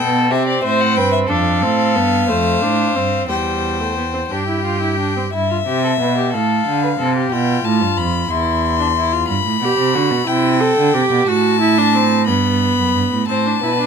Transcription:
Already playing: B2 B3 G5
0.00 A4
0.31 C3 C4 G4 E5
0.47 D5
0.64 A2 C5 E5
0.80 F#5
0.96 G2 B4 G5
1.12 E5
1.29 F2 D4 A4 F5
1.62 A2 C4
1.96 G2 B3
2.29 F2 A3 C5
2.61 A2 D4
2.96 G2 C4
3.29 E2 G3 C5 G5
3.80 A3
3.97 B3
4.14 C4
4.31 G2 D4 G4 G5
4.48 E4
4.65 F4
4.82 E4
5.00 D4
5.16 C4
5.34 G2 E4 E5
5.51 F4
5.67 C3 G4
5.84 A4
6.00 B2 B4
6.17 G4
6.33 A2 A4 F5
6.67 D3
6.83 B4
6.99 C3 A4
7.16 G4
7.32 B2 F4 G5
7.64 A2 A5
7.81 G2
7.97 F2 B5
8.30 E2 E4 C6
8.79 D4
8.96 E4
9.12 F4
9.28 G2 B5
9.45 A2
9.61 B2 G4
9.78 C3
9.94 D3 F#4
10.11 B2
10.27 C3 E4 G5
10.60 A4
10.78 D3
10.94 C3 G4
11.11 B2
11.27 A2 F#4 A5
11.61 E4
11.78 D4
11.95 C4
12.27 G2 B3 B5
12.78 F#2
12.95 G2
13.12 A2
13.29 A2 C4 C5 A5
13.46 D4
13.63 B2 E4 B4
13.80 D4

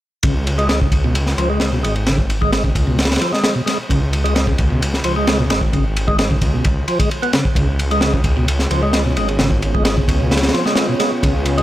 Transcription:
0.23 C#2 C#3, kick, ride
0.47 ride
0.58 G#3, ride
0.69 G#3, snare, ride
0.81 C#3, kick
0.92 C#2, kick, ride
1.04 B2
1.15 ride
1.26 snare
1.38 C#2 F3, ride
1.50 G#3
1.60 snare, ride
1.72 B2
1.83 G#1 G#3, ride
1.96 ride
2.07 C#3, snare, ride
2.19 kick
2.30 ride
2.42 G#3, kick
2.53 G#3, snare, ride
2.64 C#3, kick
2.75 C#2, kick, ride
2.87 B2
2.99 snare, ride
3.05 snare, ride
3.11 snare, ride
3.16 snare, ride
3.21 F3, snare, ride
3.33 G#3, snare
3.44 snare, ride
3.55 B2
3.66 G#3, snare, ride
3.89 C#2 C#3, kick, ride
4.13 ride
4.24 G#3, ride
4.35 G#3, snare, ride
4.47 C#3, kick
4.58 C#2, kick, ride
4.70 B2
4.82 ride
4.94 snare
5.04 C#2 F3, ride
5.16 G#3
5.27 snare, ride
5.39 B2
5.50 G#1 G#3, snare, ride
5.61 kick
5.73 C#3, kick, ride
5.96 ride
6.08 G#3, kick
6.19 G#3, snare, ride
6.30 C#3, kick
6.41 C#2, kick, ride
6.53 B2
6.64 kick, ride
6.88 F3, ride
6.99 G#3, kick, ride
7.11 ride
7.22 B3, ride
7.33 C#3, snare, ride
7.45 kick
7.55 C#2 C#3 B3 C#4 F4 G#4 C#5, kick, ride
7.79 ride
7.91 G#3, ride
8.01 G#3, snare, ride
8.14 C#3, kick
8.24 C#2, kick, ride
8.37 B2
8.48 ride
8.59 snare
8.71 C#2 F3, ride
8.83 G#3
8.93 snare, ride
9.06 B2
9.16 G#1 G#3, ride
9.28 ride
9.39 C#3, snare, ride
9.51 kick
9.62 ride
9.74 G#3, kick
9.85 G#3, snare, ride
9.97 C#3, kick
10.08 C#2, kick, ride
10.20 B2
10.31 snare, ride
10.37 snare, ride
10.43 snare, ride
10.48 snare, ride
10.54 F3, snare, ride
10.66 G#3, snare
10.76 snare, ride
10.89 B2
11.00 G#3, snare, ride
11.23 C#2 C#3, kick, ride
11.46 ride
11.58 G#3, ride

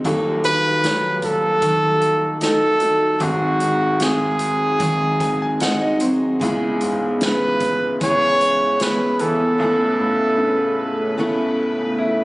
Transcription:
0.04 D#1 D#2 D#3 F#3 D#4 F#4 A4, kick, closed hi-hat
0.44 D#3 B4, closed hi-hat
0.83 F#3 D#4 F#4 A4, snare, closed hi-hat
1.22 A4, kick, closed hi-hat
1.62 D#3 F#3 D#4 F#4 A4, kick, closed hi-hat
2.01 closed hi-hat
2.41 D#4 A4, snare, closed hi-hat
2.80 A3 D#4 F#4 A4, closed hi-hat
3.19 G#1 G#2 D#3 F#3 C4 D#4, kick, closed hi-hat
3.23 F#4 G#4
3.60 D#3, closed hi-hat
4.00 C4 G#4, snare, closed hi-hat
4.39 closed hi-hat
4.79 G#2 D#3 F#3 C4 D#4 G#4, kick, closed hi-hat
5.20 G#5, kick, closed hi-hat
5.42 G#5
5.60 D#4 F#5, snare, closed hi-hat
5.81 D#5
6.00 F#3 C4 D#4 G#4, closed hi-hat
6.40 C#2 C#3 E3 G#3 B3 C#4 E4 B4, kick, closed hi-hat
6.44 G#4
6.81 G#2, closed hi-hat
7.21 C#3, snare, closed hi-hat
7.25 B4
7.60 kick, closed hi-hat
8.00 C#3 G#3 B3 E4 G#4 C#5, kick, closed hi-hat
8.41 closed hi-hat
8.80 B3 B4, snare, closed hi-hat
9.19 E3 B3 E4 A4, closed hi-hat
9.58 C#2 C#3 A3 B3 B4
9.62 E4 A4
9.99 A2
10.38 C#3
11.18 C#3 A3 B3 E4 A4
11.98 E4

